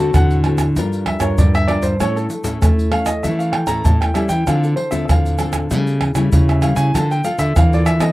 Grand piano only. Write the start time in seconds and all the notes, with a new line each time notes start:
Already playing: A5
0.15 F#5
1.08 E5
1.21 C#5
1.38 D5
1.55 E5
1.68 D5
1.83 C5
2.00 C#5
2.16 A4
2.92 F5
3.06 D#5
3.23 E5
3.39 F5
3.52 G5
3.67 A#5
3.84 A5
4.01 G5
4.14 E5
4.29 G5
4.47 F5
4.64 A4
4.76 C5
4.91 E5
5.05 E5
5.10 F5
6.49 E5
6.63 F5
6.76 G#5
6.95 A5
7.11 G5
7.25 F5
7.39 E5
7.57 F5
7.74 D5
7.86 E5
8.01 D#5